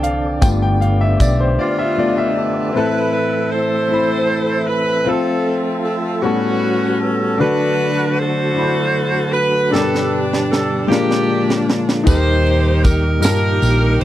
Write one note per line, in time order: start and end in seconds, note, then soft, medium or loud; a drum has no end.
0.00 0.38 C2 medium
0.00 2.71 D3 medium
0.00 0.38 E3 medium
0.00 0.38 F3 medium
0.00 0.38 C4 soft
0.00 0.41 C4 medium
0.00 2.71 D4 medium
0.00 0.39 A4 medium
0.00 2.71 D5 medium
0.00 0.03 F5 medium
0.00 0.39 F5 medium
0.00 0.42 G5 loud
0.00 0.44 A5 loud
0.00 closed hi-hat medium
0.41 1.16 G1 loud
0.41 1.97 A3 medium
0.41 1.97 B3 medium
0.41 2.73 B3 medium
0.41 1.96 F4 medium
0.41 2.73 G4 medium
0.41 0.47 G5 loud
0.41 kick loud
0.41 closed hi-hat medium
0.41 tambourine medium
0.62 0.82 G5 medium
0.81 1.01 F5 medium
0.81 closed hi-hat soft
1.01 1.20 E5 medium
1.20 1.57 B1 medium
1.20 1.40 D5 medium
1.20 kick medium
1.20 closed hi-hat soft
1.20 tambourine medium
1.40 1.60 C5 medium
1.59 2.72 B3 medium
1.59 2.72 D4 medium
1.59 2.33 F4 medium
1.59 1.79 D5 medium
1.79 1.98 E5 medium
1.98 2.33 A3 soft
1.98 2.33 B3 soft
1.98 2.33 F4 medium
1.98 2.11 D5 medium
2.10 2.17 D#5 medium
2.18 2.71 E5 medium
2.36 2.75 A4 medium
2.73 3.87 A2 medium
2.73 3.47 C4 medium
2.73 3.48 E4 medium
2.73 9.71 A4 medium
2.73 3.12 B4 loud
2.77 5.07 E3 medium
2.77 6.22 A3 medium
2.77 6.22 C4 medium
2.77 3.52 E4 medium
2.77 3.49 A4 medium
2.77 6.22 E5 medium
3.13 3.49 B4 medium
3.52 4.65 E4 medium
3.52 4.65 A4 medium
3.52 4.69 C5 loud
3.89 4.63 C4 medium
3.89 4.65 E4 medium
3.94 4.66 B5 medium
4.67 5.07 B4 medium
5.05 6.23 F3 medium
5.05 5.80 C4 medium
5.05 6.21 C4 medium
5.05 5.81 F4 medium
5.05 5.59 A4 loud
5.05 5.82 A4 medium
5.09 6.21 F4 medium
5.84 6.21 A4 loud
6.22 7.37 A2 medium
6.22 6.97 G3 medium
6.22 7.40 G3 medium
6.22 6.97 B3 medium
6.22 7.37 B3 medium
6.22 7.40 B3 medium
6.22 6.97 C#4 medium
6.22 7.37 C#4 medium
6.22 7.40 C#4 medium
6.22 7.01 F#4 loud
6.22 9.71 F#4 medium
6.22 6.98 F#4 medium
6.22 6.98 A4 medium
7.00 7.40 A4 loud
7.38 8.53 D3 medium
7.38 12.03 D3 medium
7.38 8.13 D4 medium
7.38 8.14 F#4 medium
7.38 8.18 B4 loud
7.42 9.72 F#3 medium
7.42 9.72 A3 medium
7.42 8.54 D4 medium
7.42 8.19 F#4 medium
7.42 8.15 A4 medium
8.18 9.32 F#4 medium
8.18 9.32 A4 medium
8.18 9.35 C5 loud
8.54 9.29 D4 medium
8.54 8.63 E4 soft
8.58 9.31 B5 medium
8.63 9.33 F#4 medium
9.33 9.73 B4 loud
9.70 10.86 G2 medium
9.70 10.90 B2 medium
9.70 10.89 G3 medium
9.70 10.46 D4 medium
9.70 10.87 D4 medium
9.70 10.47 G4 medium
9.70 10.89 G4 medium
9.70 10.20 A4 loud
9.74 10.90 D4 medium
9.74 9.81 A#4 medium
9.74 snare medium
9.81 10.51 B4 medium
9.95 snare medium
10.33 snare medium
10.50 10.87 A4 medium
10.50 snare medium
10.87 12.03 A#2 medium
10.87 11.62 G#3 medium
10.87 11.63 A#3 medium
10.87 11.64 D4 medium
10.87 12.03 D4 medium
10.87 11.64 F4 medium
10.87 11.77 G4 loud
10.91 12.07 F3 medium
10.91 12.07 G#3 medium
10.91 12.07 A#3 medium
10.91 12.07 F4 medium
10.91 11.64 A#4 medium
10.91 snare medium
11.11 snare medium
11.50 snare medium
11.70 snare loud
11.89 snare medium
12.04 13.23 D#2 loud
12.04 13.19 D#3 medium
12.04 12.79 D#4 medium
12.04 12.80 G4 medium
12.04 12.14 A4 medium
12.04 12.80 C5 loud
12.04 kick loud
12.04 ride medium
12.04 tambourine medium
12.08 14.04 A#2 medium
12.08 14.04 D#3 medium
12.08 14.04 G3 medium
12.08 13.20 D#4 medium
12.08 14.04 D#4 medium
12.08 13.20 G4 medium
12.08 14.04 G4 medium
12.14 12.84 A#4 medium
12.47 ride soft
12.82 13.21 A#4 loud
12.82 kick loud
12.82 ride soft
12.82 tambourine medium
13.21 13.59 G2 loud
13.21 13.96 D#4 medium
13.21 13.30 F4 medium
13.21 14.04 G4 medium
13.21 13.97 A#4 loud
13.21 ride medium
13.21 tambourine loud
13.25 14.04 D#4 medium
13.25 13.98 A5 medium
13.25 snare loud
13.29 14.00 G4 medium
13.62 13.98 A#1 medium
13.62 ride soft
13.62 tambourine medium
14.00 14.04 C5 loud
14.00 ride soft